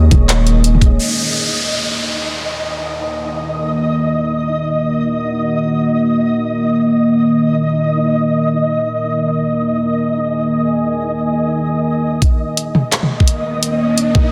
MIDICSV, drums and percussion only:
0, 0, Header, 1, 2, 480
1, 0, Start_track
1, 0, Key_signature, -6, "minor"
1, 0, Tempo, 500000
1, 13745, End_track
2, 0, Start_track
2, 0, Title_t, "Drums"
2, 108, Note_on_c, 9, 36, 103
2, 112, Note_on_c, 9, 42, 38
2, 112, Note_on_c, 9, 45, 65
2, 204, Note_off_c, 9, 36, 0
2, 208, Note_off_c, 9, 42, 0
2, 208, Note_off_c, 9, 45, 0
2, 279, Note_on_c, 9, 39, 121
2, 279, Note_on_c, 9, 42, 85
2, 375, Note_off_c, 9, 39, 0
2, 375, Note_off_c, 9, 42, 0
2, 447, Note_on_c, 9, 42, 39
2, 543, Note_off_c, 9, 42, 0
2, 616, Note_on_c, 9, 42, 72
2, 712, Note_off_c, 9, 42, 0
2, 717, Note_on_c, 9, 45, 41
2, 782, Note_on_c, 9, 36, 59
2, 785, Note_on_c, 9, 42, 36
2, 813, Note_off_c, 9, 45, 0
2, 878, Note_off_c, 9, 36, 0
2, 881, Note_off_c, 9, 42, 0
2, 11730, Note_on_c, 9, 36, 116
2, 11733, Note_on_c, 9, 42, 83
2, 11826, Note_off_c, 9, 36, 0
2, 11829, Note_off_c, 9, 42, 0
2, 12070, Note_on_c, 9, 42, 68
2, 12166, Note_off_c, 9, 42, 0
2, 12238, Note_on_c, 9, 45, 61
2, 12334, Note_off_c, 9, 45, 0
2, 12406, Note_on_c, 9, 39, 119
2, 12406, Note_on_c, 9, 42, 81
2, 12502, Note_off_c, 9, 39, 0
2, 12502, Note_off_c, 9, 42, 0
2, 12507, Note_on_c, 9, 45, 50
2, 12603, Note_off_c, 9, 45, 0
2, 12673, Note_on_c, 9, 36, 61
2, 12744, Note_on_c, 9, 42, 71
2, 12769, Note_off_c, 9, 36, 0
2, 12840, Note_off_c, 9, 42, 0
2, 13081, Note_on_c, 9, 42, 82
2, 13177, Note_off_c, 9, 42, 0
2, 13417, Note_on_c, 9, 42, 69
2, 13513, Note_off_c, 9, 42, 0
2, 13583, Note_on_c, 9, 36, 107
2, 13583, Note_on_c, 9, 45, 61
2, 13679, Note_off_c, 9, 36, 0
2, 13679, Note_off_c, 9, 45, 0
2, 13745, End_track
0, 0, End_of_file